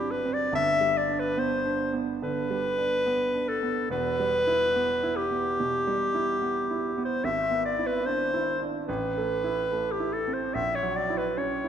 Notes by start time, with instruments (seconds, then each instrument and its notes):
Already playing: grand piano G2 F#3 C4 D4, clarinet G4
0.11 clarinet B4
0.25 grand piano C4
0.33 clarinet D5
0.52 grand piano G1 G2, clarinet E5
0.81 grand piano G3
0.97 clarinet D5
1.09 grand piano D4
1.19 clarinet B4
1.37 grand piano B3, clarinet C5
1.65 grand piano D4
1.93 grand piano B3
2.22 grand piano D3, clarinet B4
2.50 grand piano G3
2.78 grand piano D4
3.06 grand piano B3
3.34 grand piano D4
3.48 clarinet A4
3.63 grand piano B3
3.90 grand piano E1 E2, clarinet B4
4.20 grand piano G3
4.47 grand piano E4
4.76 grand piano B3
5.03 grand piano E4
5.16 clarinet G4
5.31 grand piano B3
5.60 grand piano B2
5.87 grand piano G3
6.15 grand piano E4
6.42 grand piano B3
6.71 grand piano E4
6.98 grand piano B3
7.05 clarinet C5
7.24 grand piano G#1, clarinet E5
7.51 grand piano B3
7.65 clarinet D5
7.79 grand piano E4
7.86 clarinet B4
8.06 grand piano D4, clarinet C5
8.34 grand piano E4
8.62 grand piano D4
8.88 grand piano A1, clarinet B4
9.18 grand piano A3
9.44 grand piano E4
9.72 grand piano A3
9.91 clarinet G4
10.00 grand piano E4
10.13 clarinet A4
10.28 grand piano C4
10.33 clarinet C5
10.54 grand piano A#1, clarinet E5
10.75 clarinet C#5
10.83 grand piano F#3
10.96 clarinet D5
11.10 grand piano E4
11.17 clarinet B4
11.37 grand piano C#4, clarinet C#5
11.64 grand piano E4